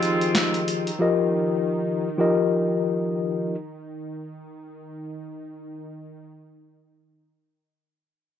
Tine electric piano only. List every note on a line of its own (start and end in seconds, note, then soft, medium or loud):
0.00 0.89 F3 medium
0.00 0.89 F4 medium
0.00 0.90 G4 medium
0.00 0.90 G#4 medium
0.00 0.91 D#5 loud
0.99 2.07 F3 medium
0.99 2.07 F4 medium
0.99 2.08 G4 medium
0.99 2.08 A#4 medium
0.99 2.08 D#5 loud
2.18 3.54 F3 medium
2.18 3.54 F4 medium
2.18 3.55 G4 medium
2.18 3.55 A#4 medium
2.18 3.55 D#5 loud